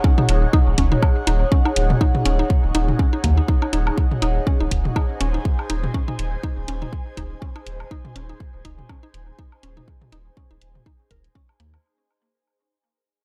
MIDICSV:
0, 0, Header, 1, 5, 480
1, 0, Start_track
1, 0, Tempo, 491803
1, 41, Time_signature, 4, 2, 24, 8
1, 12923, End_track
2, 0, Start_track
2, 0, Title_t, "Analog synth pad"
2, 0, Program_c, 0, 89
2, 0, Note_on_c, 0, 63, 92
2, 0, Note_on_c, 0, 68, 68
2, 0, Note_on_c, 0, 73, 81
2, 0, Note_on_c, 0, 78, 78
2, 4753, Note_on_c, 0, 80, 82
2, 4853, Note_on_c, 0, 72, 75
2, 4889, Note_off_c, 0, 78, 0
2, 5006, Note_off_c, 0, 73, 0
2, 11561, Note_off_c, 0, 63, 0
2, 11561, Note_off_c, 0, 68, 0
2, 11561, Note_off_c, 0, 72, 0
2, 11561, Note_off_c, 0, 80, 0
2, 12923, End_track
3, 0, Start_track
3, 0, Title_t, "Synth arpeggio sound"
3, 0, Program_c, 1, 84
3, 41, Note_on_c, 1, 61, 88
3, 115, Note_off_c, 1, 61, 0
3, 174, Note_on_c, 1, 63, 73
3, 214, Note_off_c, 1, 63, 0
3, 520, Note_on_c, 1, 63, 99
3, 550, Note_off_c, 1, 63, 0
3, 762, Note_on_c, 1, 61, 79
3, 835, Note_off_c, 1, 61, 0
3, 895, Note_on_c, 1, 63, 77
3, 934, Note_off_c, 1, 63, 0
3, 1240, Note_on_c, 1, 63, 101
3, 1270, Note_off_c, 1, 63, 0
3, 1481, Note_on_c, 1, 61, 86
3, 1555, Note_off_c, 1, 61, 0
3, 1615, Note_on_c, 1, 63, 76
3, 1654, Note_off_c, 1, 63, 0
3, 1961, Note_on_c, 1, 63, 104
3, 1991, Note_off_c, 1, 63, 0
3, 2201, Note_on_c, 1, 61, 79
3, 2275, Note_off_c, 1, 61, 0
3, 2335, Note_on_c, 1, 63, 78
3, 2374, Note_off_c, 1, 63, 0
3, 2681, Note_on_c, 1, 63, 99
3, 2711, Note_off_c, 1, 63, 0
3, 2921, Note_on_c, 1, 61, 82
3, 2995, Note_off_c, 1, 61, 0
3, 3054, Note_on_c, 1, 63, 74
3, 3094, Note_off_c, 1, 63, 0
3, 3160, Note_on_c, 1, 58, 79
3, 3210, Note_off_c, 1, 58, 0
3, 3294, Note_on_c, 1, 63, 73
3, 3334, Note_off_c, 1, 63, 0
3, 3400, Note_on_c, 1, 63, 83
3, 3475, Note_off_c, 1, 63, 0
3, 3534, Note_on_c, 1, 63, 74
3, 3573, Note_off_c, 1, 63, 0
3, 3639, Note_on_c, 1, 63, 73
3, 3690, Note_off_c, 1, 63, 0
3, 4120, Note_on_c, 1, 63, 99
3, 4150, Note_off_c, 1, 63, 0
3, 4361, Note_on_c, 1, 61, 82
3, 4435, Note_off_c, 1, 61, 0
3, 4494, Note_on_c, 1, 63, 76
3, 4534, Note_off_c, 1, 63, 0
3, 4841, Note_on_c, 1, 63, 96
3, 4871, Note_off_c, 1, 63, 0
3, 5081, Note_on_c, 1, 61, 79
3, 5155, Note_off_c, 1, 61, 0
3, 5214, Note_on_c, 1, 63, 75
3, 5254, Note_off_c, 1, 63, 0
3, 5561, Note_on_c, 1, 63, 98
3, 5591, Note_off_c, 1, 63, 0
3, 5801, Note_on_c, 1, 61, 85
3, 5875, Note_off_c, 1, 61, 0
3, 5934, Note_on_c, 1, 63, 75
3, 5974, Note_off_c, 1, 63, 0
3, 6281, Note_on_c, 1, 63, 96
3, 6310, Note_off_c, 1, 63, 0
3, 6522, Note_on_c, 1, 61, 79
3, 6595, Note_off_c, 1, 61, 0
3, 6655, Note_on_c, 1, 63, 73
3, 6694, Note_off_c, 1, 63, 0
3, 7001, Note_on_c, 1, 63, 102
3, 7031, Note_off_c, 1, 63, 0
3, 7241, Note_on_c, 1, 61, 84
3, 7315, Note_off_c, 1, 61, 0
3, 7375, Note_on_c, 1, 63, 78
3, 7414, Note_off_c, 1, 63, 0
3, 7721, Note_on_c, 1, 63, 102
3, 7751, Note_off_c, 1, 63, 0
3, 7961, Note_on_c, 1, 61, 77
3, 8035, Note_off_c, 1, 61, 0
3, 8095, Note_on_c, 1, 63, 76
3, 8134, Note_off_c, 1, 63, 0
3, 8441, Note_on_c, 1, 63, 98
3, 8470, Note_off_c, 1, 63, 0
3, 8681, Note_on_c, 1, 61, 81
3, 8755, Note_off_c, 1, 61, 0
3, 8815, Note_on_c, 1, 63, 77
3, 8854, Note_off_c, 1, 63, 0
3, 9161, Note_on_c, 1, 63, 102
3, 9190, Note_off_c, 1, 63, 0
3, 9401, Note_on_c, 1, 61, 75
3, 9475, Note_off_c, 1, 61, 0
3, 9535, Note_on_c, 1, 63, 77
3, 9574, Note_off_c, 1, 63, 0
3, 9881, Note_on_c, 1, 63, 96
3, 9910, Note_off_c, 1, 63, 0
3, 10121, Note_on_c, 1, 61, 76
3, 10195, Note_off_c, 1, 61, 0
3, 10255, Note_on_c, 1, 63, 76
3, 10294, Note_off_c, 1, 63, 0
3, 10601, Note_on_c, 1, 63, 95
3, 10631, Note_off_c, 1, 63, 0
3, 10841, Note_on_c, 1, 70, 79
3, 10891, Note_off_c, 1, 70, 0
3, 11081, Note_on_c, 1, 61, 102
3, 11111, Note_off_c, 1, 61, 0
3, 11321, Note_on_c, 1, 58, 99
3, 11370, Note_off_c, 1, 58, 0
3, 12923, End_track
4, 0, Start_track
4, 0, Title_t, "Analog synth bass"
4, 0, Program_c, 2, 38
4, 281, Note_on_c, 2, 27, 97
4, 441, Note_off_c, 2, 27, 0
4, 655, Note_on_c, 2, 27, 93
4, 721, Note_off_c, 2, 27, 0
4, 760, Note_on_c, 2, 27, 101
4, 920, Note_off_c, 2, 27, 0
4, 1241, Note_on_c, 2, 27, 107
4, 1401, Note_off_c, 2, 27, 0
4, 1720, Note_on_c, 2, 27, 84
4, 1881, Note_off_c, 2, 27, 0
4, 2201, Note_on_c, 2, 27, 100
4, 2361, Note_off_c, 2, 27, 0
4, 2575, Note_on_c, 2, 27, 92
4, 2641, Note_off_c, 2, 27, 0
4, 2680, Note_on_c, 2, 27, 101
4, 2841, Note_off_c, 2, 27, 0
4, 3160, Note_on_c, 2, 39, 101
4, 3321, Note_off_c, 2, 39, 0
4, 3640, Note_on_c, 2, 27, 78
4, 3801, Note_off_c, 2, 27, 0
4, 4121, Note_on_c, 2, 27, 97
4, 4281, Note_off_c, 2, 27, 0
4, 4494, Note_on_c, 2, 27, 90
4, 4561, Note_off_c, 2, 27, 0
4, 4600, Note_on_c, 2, 27, 100
4, 4761, Note_off_c, 2, 27, 0
4, 5081, Note_on_c, 2, 27, 99
4, 5241, Note_off_c, 2, 27, 0
4, 5561, Note_on_c, 2, 27, 79
4, 5721, Note_off_c, 2, 27, 0
4, 6040, Note_on_c, 2, 27, 98
4, 6201, Note_off_c, 2, 27, 0
4, 6413, Note_on_c, 2, 27, 90
4, 6480, Note_off_c, 2, 27, 0
4, 6519, Note_on_c, 2, 27, 104
4, 6680, Note_off_c, 2, 27, 0
4, 7000, Note_on_c, 2, 27, 100
4, 7161, Note_off_c, 2, 27, 0
4, 7480, Note_on_c, 2, 27, 80
4, 7640, Note_off_c, 2, 27, 0
4, 7961, Note_on_c, 2, 27, 93
4, 8121, Note_off_c, 2, 27, 0
4, 8334, Note_on_c, 2, 27, 87
4, 8401, Note_off_c, 2, 27, 0
4, 8440, Note_on_c, 2, 27, 100
4, 8601, Note_off_c, 2, 27, 0
4, 8920, Note_on_c, 2, 27, 102
4, 9081, Note_off_c, 2, 27, 0
4, 9401, Note_on_c, 2, 27, 84
4, 9561, Note_off_c, 2, 27, 0
4, 9880, Note_on_c, 2, 27, 95
4, 10041, Note_off_c, 2, 27, 0
4, 10254, Note_on_c, 2, 27, 90
4, 10321, Note_off_c, 2, 27, 0
4, 10360, Note_on_c, 2, 27, 96
4, 10521, Note_off_c, 2, 27, 0
4, 10840, Note_on_c, 2, 27, 102
4, 11001, Note_off_c, 2, 27, 0
4, 11321, Note_on_c, 2, 39, 89
4, 11481, Note_off_c, 2, 39, 0
4, 12923, End_track
5, 0, Start_track
5, 0, Title_t, "Drums"
5, 40, Note_on_c, 9, 36, 122
5, 138, Note_off_c, 9, 36, 0
5, 176, Note_on_c, 9, 45, 96
5, 273, Note_off_c, 9, 45, 0
5, 280, Note_on_c, 9, 42, 90
5, 377, Note_off_c, 9, 42, 0
5, 520, Note_on_c, 9, 36, 122
5, 618, Note_off_c, 9, 36, 0
5, 760, Note_on_c, 9, 36, 60
5, 760, Note_on_c, 9, 42, 96
5, 858, Note_off_c, 9, 36, 0
5, 858, Note_off_c, 9, 42, 0
5, 895, Note_on_c, 9, 45, 83
5, 993, Note_off_c, 9, 45, 0
5, 1000, Note_on_c, 9, 36, 120
5, 1001, Note_on_c, 9, 77, 85
5, 1098, Note_off_c, 9, 36, 0
5, 1098, Note_off_c, 9, 77, 0
5, 1240, Note_on_c, 9, 42, 96
5, 1338, Note_off_c, 9, 42, 0
5, 1480, Note_on_c, 9, 36, 127
5, 1578, Note_off_c, 9, 36, 0
5, 1615, Note_on_c, 9, 77, 58
5, 1712, Note_off_c, 9, 77, 0
5, 1721, Note_on_c, 9, 42, 97
5, 1818, Note_off_c, 9, 42, 0
5, 1855, Note_on_c, 9, 45, 94
5, 1952, Note_off_c, 9, 45, 0
5, 1960, Note_on_c, 9, 36, 117
5, 2058, Note_off_c, 9, 36, 0
5, 2095, Note_on_c, 9, 45, 88
5, 2193, Note_off_c, 9, 45, 0
5, 2201, Note_on_c, 9, 42, 92
5, 2298, Note_off_c, 9, 42, 0
5, 2441, Note_on_c, 9, 36, 123
5, 2538, Note_off_c, 9, 36, 0
5, 2681, Note_on_c, 9, 42, 95
5, 2778, Note_off_c, 9, 42, 0
5, 2815, Note_on_c, 9, 45, 78
5, 2913, Note_off_c, 9, 45, 0
5, 2920, Note_on_c, 9, 36, 118
5, 3018, Note_off_c, 9, 36, 0
5, 3160, Note_on_c, 9, 36, 60
5, 3161, Note_on_c, 9, 42, 96
5, 3258, Note_off_c, 9, 36, 0
5, 3258, Note_off_c, 9, 42, 0
5, 3400, Note_on_c, 9, 36, 122
5, 3498, Note_off_c, 9, 36, 0
5, 3535, Note_on_c, 9, 77, 56
5, 3632, Note_off_c, 9, 77, 0
5, 3640, Note_on_c, 9, 42, 89
5, 3738, Note_off_c, 9, 42, 0
5, 3776, Note_on_c, 9, 77, 81
5, 3873, Note_off_c, 9, 77, 0
5, 3881, Note_on_c, 9, 36, 117
5, 3978, Note_off_c, 9, 36, 0
5, 4016, Note_on_c, 9, 45, 84
5, 4113, Note_off_c, 9, 45, 0
5, 4120, Note_on_c, 9, 42, 86
5, 4218, Note_off_c, 9, 42, 0
5, 4360, Note_on_c, 9, 36, 113
5, 4458, Note_off_c, 9, 36, 0
5, 4601, Note_on_c, 9, 36, 58
5, 4601, Note_on_c, 9, 42, 95
5, 4698, Note_off_c, 9, 36, 0
5, 4699, Note_off_c, 9, 42, 0
5, 4736, Note_on_c, 9, 45, 77
5, 4834, Note_off_c, 9, 45, 0
5, 4841, Note_on_c, 9, 36, 112
5, 4842, Note_on_c, 9, 77, 79
5, 4938, Note_off_c, 9, 36, 0
5, 4940, Note_off_c, 9, 77, 0
5, 5081, Note_on_c, 9, 42, 91
5, 5178, Note_off_c, 9, 42, 0
5, 5321, Note_on_c, 9, 36, 116
5, 5418, Note_off_c, 9, 36, 0
5, 5456, Note_on_c, 9, 77, 54
5, 5554, Note_off_c, 9, 77, 0
5, 5560, Note_on_c, 9, 42, 92
5, 5658, Note_off_c, 9, 42, 0
5, 5696, Note_on_c, 9, 45, 88
5, 5793, Note_off_c, 9, 45, 0
5, 5801, Note_on_c, 9, 36, 110
5, 5898, Note_off_c, 9, 36, 0
5, 5935, Note_on_c, 9, 45, 84
5, 6033, Note_off_c, 9, 45, 0
5, 6041, Note_on_c, 9, 42, 88
5, 6139, Note_off_c, 9, 42, 0
5, 6280, Note_on_c, 9, 36, 110
5, 6378, Note_off_c, 9, 36, 0
5, 6521, Note_on_c, 9, 42, 91
5, 6619, Note_off_c, 9, 42, 0
5, 6656, Note_on_c, 9, 45, 77
5, 6753, Note_off_c, 9, 45, 0
5, 6760, Note_on_c, 9, 36, 106
5, 6858, Note_off_c, 9, 36, 0
5, 7000, Note_on_c, 9, 36, 56
5, 7001, Note_on_c, 9, 42, 86
5, 7098, Note_off_c, 9, 36, 0
5, 7099, Note_off_c, 9, 42, 0
5, 7240, Note_on_c, 9, 36, 113
5, 7338, Note_off_c, 9, 36, 0
5, 7375, Note_on_c, 9, 77, 54
5, 7473, Note_off_c, 9, 77, 0
5, 7481, Note_on_c, 9, 42, 84
5, 7579, Note_off_c, 9, 42, 0
5, 7615, Note_on_c, 9, 77, 72
5, 7712, Note_off_c, 9, 77, 0
5, 7721, Note_on_c, 9, 36, 105
5, 7818, Note_off_c, 9, 36, 0
5, 7854, Note_on_c, 9, 45, 91
5, 7952, Note_off_c, 9, 45, 0
5, 7961, Note_on_c, 9, 42, 84
5, 8059, Note_off_c, 9, 42, 0
5, 8201, Note_on_c, 9, 36, 114
5, 8298, Note_off_c, 9, 36, 0
5, 8441, Note_on_c, 9, 36, 53
5, 8442, Note_on_c, 9, 42, 84
5, 8538, Note_off_c, 9, 36, 0
5, 8539, Note_off_c, 9, 42, 0
5, 8575, Note_on_c, 9, 45, 76
5, 8672, Note_off_c, 9, 45, 0
5, 8681, Note_on_c, 9, 36, 100
5, 8681, Note_on_c, 9, 77, 75
5, 8779, Note_off_c, 9, 36, 0
5, 8779, Note_off_c, 9, 77, 0
5, 8922, Note_on_c, 9, 42, 85
5, 9020, Note_off_c, 9, 42, 0
5, 9161, Note_on_c, 9, 36, 113
5, 9259, Note_off_c, 9, 36, 0
5, 9295, Note_on_c, 9, 77, 52
5, 9392, Note_off_c, 9, 77, 0
5, 9401, Note_on_c, 9, 42, 84
5, 9499, Note_off_c, 9, 42, 0
5, 9535, Note_on_c, 9, 45, 87
5, 9632, Note_off_c, 9, 45, 0
5, 9641, Note_on_c, 9, 36, 107
5, 9739, Note_off_c, 9, 36, 0
5, 9775, Note_on_c, 9, 45, 90
5, 9873, Note_off_c, 9, 45, 0
5, 9881, Note_on_c, 9, 42, 83
5, 9979, Note_off_c, 9, 42, 0
5, 10121, Note_on_c, 9, 36, 109
5, 10218, Note_off_c, 9, 36, 0
5, 10361, Note_on_c, 9, 42, 84
5, 10458, Note_off_c, 9, 42, 0
5, 10496, Note_on_c, 9, 45, 77
5, 10593, Note_off_c, 9, 45, 0
5, 10601, Note_on_c, 9, 36, 106
5, 10698, Note_off_c, 9, 36, 0
5, 10840, Note_on_c, 9, 42, 84
5, 10841, Note_on_c, 9, 36, 58
5, 10938, Note_off_c, 9, 36, 0
5, 10938, Note_off_c, 9, 42, 0
5, 10974, Note_on_c, 9, 42, 33
5, 11072, Note_off_c, 9, 42, 0
5, 11080, Note_on_c, 9, 36, 117
5, 11178, Note_off_c, 9, 36, 0
5, 11216, Note_on_c, 9, 77, 52
5, 11313, Note_off_c, 9, 77, 0
5, 11321, Note_on_c, 9, 42, 85
5, 11418, Note_off_c, 9, 42, 0
5, 11455, Note_on_c, 9, 77, 71
5, 11553, Note_off_c, 9, 77, 0
5, 12923, End_track
0, 0, End_of_file